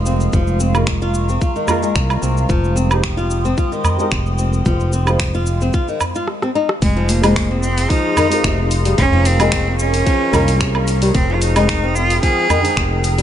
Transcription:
Already playing: F1 G#3 C4 D#4 F4 A#4 F5 C6 D#6
0.06 C4, shaker
0.20 shaker
0.33 F1 F3 A#5 C#6, kick, shaker
0.47 udu, shaker
0.60 C4, shaker
0.73 G#3 A#3 F4, low woodblock, shaker
0.77 A#4
0.87 finger snap, kick, shaker
1.02 F4, shaker
1.14 shaker
1.29 C4, shaker
1.41 F4, kick, shaker
1.56 D#3, shaker
1.67 G#3 A#3 F4 A#4, udu, low woodblock, shaker
1.82 G#3, shaker
1.96 C2, finger snap, kick, shaker
2.10 low woodblock, shaker
2.22 C2 C4, shaker
2.37 shaker
2.49 F1 F3 G5 C6 D#6, kick, shaker
2.64 shaker
2.76 C4, shaker
2.89 G#3 C4 D#4 G4, low woodblock, shaker
2.93 C5
3.04 finger snap, kick, shaker
3.17 F4, shaker
3.31 shaker
3.45 C4, shaker
3.58 F4, kick, shaker
3.72 D#3, shaker
3.84 udu, low woodblock, shaker
3.97 G#3 C4 D#4 G4 A#4, shaker
4.12 F1, finger snap, kick, shaker
4.26 shaker
4.38 C4, shaker
4.53 shaker
4.66 F1 F3 F5, kick, shaker
4.80 udu, shaker
4.93 C4, shaker
5.05 G#3 C4 F4, low woodblock, shaker
5.10 C5
5.20 finger snap, kick, shaker
5.34 F4, udu, shaker
5.46 shaker
5.61 C4, shaker
5.73 F4, kick, shaker
5.88 D#3, shaker
6.01 udu, low woodblock, shaker
6.15 F4, shaker
6.28 cross-stick
6.42 C4, cross-stick
6.55 D#4
6.69 cross-stick
6.82 F1 G#3 G#4 A#4 F5 A#5 C6 D#6, kick, open hi-hat, shaker
6.97 F3
7.08 A#3, open hi-hat, shaker
7.21 G#3 C4 D#4 F4, open hi-hat, low woodblock, shaker
7.25 C5
7.36 finger snap, kick, open hi-hat, shaker
7.51 C4
7.61 C4, shaker
7.78 open hi-hat, shaker
7.90 F3 D#4, kick, open hi-hat, shaker
8.17 D#3, open hi-hat, udu, low woodblock, shaker
8.29 G#3 C4 D#4 F4 A#4, open hi-hat, shaker
8.44 F1 C3, finger snap, kick, shaker
8.71 open hi-hat, shaker
8.85 G3, open hi-hat, shaker
8.98 F1 C#4 G#4 A#4 C#6, kick, open hi-hat, shaker
9.13 F3, udu
9.25 C4, open hi-hat, shaker
9.38 G#3 A#3 F4, open hi-hat, low woodblock, shaker
9.42 A#4
9.52 finger snap, kick, open hi-hat, shaker
9.67 C4
9.79 C#4, shaker
9.94 open hi-hat, shaker
10.06 F3, kick, open hi-hat, shaker
10.31 C2 D#3 G#3 A#3 F4 A#4, open hi-hat, udu, low woodblock, shaker
10.48 open hi-hat, shaker
10.61 C3, finger snap, kick, open hi-hat, shaker
10.75 low woodblock
10.88 open hi-hat, shaker
11.02 G3, open hi-hat, shaker
11.15 F1 C4 G5 D#6, kick, open hi-hat, shaker
11.30 F3
11.34 F4
11.41 D#4, open hi-hat, shaker
11.55 G#3 C4 D#4 G#4, open hi-hat, low woodblock, shaker
11.69 finger snap, kick, open hi-hat, shaker
11.84 C4
11.95 F4, shaker
12.10 open hi-hat, shaker
12.22 F3 G#4, kick, open hi-hat, shaker
12.50 D#3, open hi-hat, udu, low woodblock, shaker
12.62 D#3 G#3 C4 D#4, open hi-hat, shaker
12.66 G5
12.77 F1 C3, finger snap, kick, shaker
13.04 open hi-hat, shaker
13.18 G3, open hi-hat, shaker

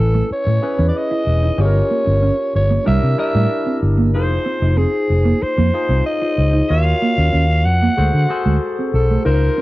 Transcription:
Already playing: C#4 E4 A4 B4 G#5
0.00 A1
0.14 A3
0.31 C#5, muted fingered electric bass stroke
0.47 A2 A3
0.62 C#4 E4 G#4 B4, muted clean electric guitar stroke
0.79 E2 C#4
0.89 D5
0.97 D#5
1.11 E4
1.27 E1, muted clean electric guitar stroke
1.43 D#4
1.58 G1 C#4 F4 G4 G#4 C#5
1.65 A#4
1.75 muted clean electric guitar stroke
1.91 A#3
2.06 G1 C#4
2.23 C#4
2.55 G1 C#5, muted clean electric guitar stroke
2.70 A#3
2.85 C2 G3 D4 E4 G4 A#4 E5
3.03 C3
3.18 D4 E4 G4 A#4 E5, muted clean electric guitar stroke
3.35 A2 G3
3.66 C4
3.83 G1, muted clean electric guitar stroke
3.98 A#3
4.14 F1 D#4 F4 G#4 A#4 C5
4.23 C5
4.30 muted clean electric guitar stroke
4.46 C4
4.62 F1 D#4
4.77 C4 G#4
5.10 F1, muted clean electric guitar stroke
5.25 A#3
5.42 C5, muted fingered electric bass stroke
5.58 F2 A#3
5.74 D#4 F4 G#4 C5, muted clean electric guitar stroke
5.89 C2 C4
6.06 D#5
6.22 F4
6.38 C#2, muted clean electric guitar stroke
6.53 D#4
6.69 D#2 F4 F#4 A#4 C#5 F5
6.85 muted clean electric guitar stroke
7.02 A#3
7.17 D#2 C#4
7.32 D#2 C#4
7.65 F2 F#5, muted clean electric guitar stroke
7.82 A#3
7.97 D2 G#3 F#4 G#4 A4 C5
8.14 D3
8.29 F#4 G#4 A4 C5, muted clean electric guitar stroke
8.45 D2 G#3
8.78 C4
8.94 B1 A4, muted clean electric guitar stroke
9.10 A3
9.25 C#2 D#4 F4 A#4 C5
9.42 muted clean electric guitar stroke
9.58 C#4

